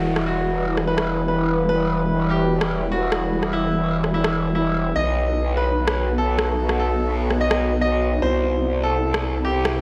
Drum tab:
SD |-r-----r-r------|---------r----r-|-r-----r-r------|---------r----r-|

SD |-r-----r-r------|---------r----r-|